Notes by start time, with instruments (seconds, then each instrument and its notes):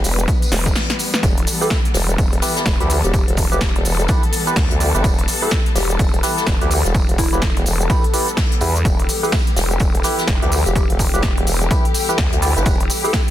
Already playing: string section E3 G3 B3 B4, ambient pad D5
0.04 wobble bass E1, open hi-hat, tambourine, shaker
0.18 closed hi-hat, shaker
0.28 kick, closed hi-hat, tambourine, shaker
0.42 closed hi-hat, tambourine
0.52 wobble bass E1, snare, open hi-hat, shaker
0.66 kick, tambourine, shaker
0.75 snare, closed hi-hat, open hi-hat, shaker
0.89 snare, closed hi-hat
0.99 open hi-hat, tambourine, shaker
1.14 snare, closed hi-hat, shaker
1.23 wobble bass E1, string section A4, kick, closed hi-hat, tambourine, shaker
1.38 closed hi-hat
1.47 open hi-hat, tambourine, shaker
1.61 synth stab E4 G4 B4, soft synth lead A4, shaker
1.70 kick, snare, tambourine, shaker
1.85 closed hi-hat
1.94 wobble bass E1, snare, open hi-hat, tambourine, shaker
2.09 closed hi-hat, shaker
2.18 wobble bass E1, kick, closed hi-hat, tambourine, shaker
2.33 closed hi-hat
2.41 synth stab E4 G4 B4, ambient pad A4, snare, open hi-hat, tambourine, shaker
2.56 snare, closed hi-hat, shaker
2.65 wobble bass E1, kick, snare, closed hi-hat, tambourine, shaker
2.80 wobble bass D2, synth stab E4 G4 B4, closed hi-hat
2.90 open hi-hat, tambourine, shaker
3.04 wobble bass E1, soft synth lead G4, closed hi-hat, shaker
3.14 kick, closed hi-hat, tambourine, shaker
3.28 wobble bass E1, closed hi-hat
3.37 kick, open hi-hat, tambourine, shaker
3.52 wobble bass E1, synth stab E4 G4 B4, soft synth lead G4, closed hi-hat, shaker
3.61 kick, snare, closed hi-hat, tambourine, shaker
3.76 closed hi-hat
3.85 wobble bass E1, open hi-hat, tambourine, shaker
3.99 closed hi-hat, shaker
4.08 synth stab E4 G4 B4, kick, closed hi-hat, tambourine, shaker
4.23 closed hi-hat
4.33 open hi-hat, tambourine, shaker
4.47 synth stab E4 G4 B4, closed hi-hat, shaker
4.56 wobble bass D2, kick, snare, closed hi-hat, open hi-hat, shaker
4.71 wobble bass D2, closed hi-hat
4.80 synth stab E4 G4 D5, open hi-hat, tambourine, shaker
4.95 wobble bass G1, synth stab E4 G4 B4, closed hi-hat, shaker
5.04 wobble bass E1, kick, closed hi-hat, tambourine, shaker
5.19 closed hi-hat
5.28 open hi-hat, tambourine, shaker
5.42 synth stab E4 G4 B4, soft synth lead A4, shaker
5.51 kick, snare, tambourine, shaker
5.66 closed hi-hat
5.75 wobble bass E1, soft synth lead G4, snare, open hi-hat, tambourine, shaker
5.90 closed hi-hat, shaker
5.99 wobble bass E1, kick, closed hi-hat, tambourine, shaker
6.14 closed hi-hat
6.23 synth stab E4 G4 B4, snare, open hi-hat, tambourine, shaker
6.38 snare, closed hi-hat, shaker
6.47 wobble bass E1, kick, snare, closed hi-hat, tambourine, shaker
6.61 wobble bass D2, synth stab E4 G4 B4, closed hi-hat
6.71 open hi-hat, tambourine, shaker
6.85 wobble bass E1, closed hi-hat, shaker
6.95 kick, closed hi-hat, tambourine, shaker
7.09 wobble bass E1, closed hi-hat
7.18 soft synth lead E4, kick, open hi-hat, tambourine, shaker
7.33 wobble bass E1, synth stab E4 G4 B4, closed hi-hat, shaker
7.42 kick, snare, closed hi-hat, tambourine, shaker
7.57 closed hi-hat
7.66 wobble bass E1, open hi-hat, tambourine, shaker
7.80 closed hi-hat, shaker
7.90 synth stab E4 G4 B4, kick, closed hi-hat, tambourine, shaker
8.04 closed hi-hat
8.14 synth stab E4 G4 B4, open hi-hat, tambourine, shaker
8.28 closed hi-hat, shaker
8.37 kick, snare, closed hi-hat, open hi-hat, shaker
8.52 closed hi-hat
8.61 wobble bass E2, synth stab E4 G4 B4, open hi-hat, tambourine, shaker
8.76 closed hi-hat, shaker
8.85 wobble bass E1, string section G4, kick, closed hi-hat, tambourine, shaker
8.99 closed hi-hat
9.09 open hi-hat, tambourine, shaker
9.23 synth stab E4 G4 B4, soft synth lead A4, shaker
9.32 kick, snare, closed hi-hat, tambourine, shaker
9.47 closed hi-hat
9.56 wobble bass E1, snare, open hi-hat, tambourine, shaker
9.71 closed hi-hat, shaker
9.80 wobble bass E1, kick, closed hi-hat, tambourine, shaker
9.95 closed hi-hat
10.03 synth stab E4 G4 B4, snare, open hi-hat, tambourine, shaker
10.19 snare, closed hi-hat, shaker
10.28 wobble bass E1, kick, snare, closed hi-hat, tambourine, shaker
10.42 wobble bass D2, synth stab E4 G4 B4, closed hi-hat
10.52 open hi-hat, tambourine, shaker
10.66 wobble bass E1, soft synth lead G4, closed hi-hat, shaker
10.75 soft synth lead G4, kick, closed hi-hat, tambourine, shaker
10.90 wobble bass E1, closed hi-hat
10.99 kick, open hi-hat, tambourine, shaker
11.14 wobble bass E1, synth stab E4 G4 B4, soft synth lead G4, closed hi-hat, shaker
11.22 kick, snare, closed hi-hat, tambourine, shaker
11.38 closed hi-hat
11.47 wobble bass E1, open hi-hat, tambourine, shaker
11.61 closed hi-hat, shaker
11.71 synth stab E4 G4 B4, kick, closed hi-hat, tambourine, shaker
11.85 closed hi-hat
11.94 open hi-hat, tambourine, shaker
12.09 synth stab E4 G4 B4, closed hi-hat, shaker
12.18 wobble bass D2, kick, snare, closed hi-hat, open hi-hat, shaker
12.33 wobble bass D2, closed hi-hat
12.42 synth stab E4 G4 D5, open hi-hat, tambourine, shaker
12.57 wobble bass G1, synth stab E4 G4 B4, closed hi-hat, shaker
12.66 wobble bass E1, kick, closed hi-hat, tambourine, shaker
12.80 closed hi-hat
12.90 open hi-hat, tambourine, shaker
13.04 synth stab E4 G4 B4, soft synth lead A4, shaker
13.13 kick, snare, closed hi-hat, tambourine, shaker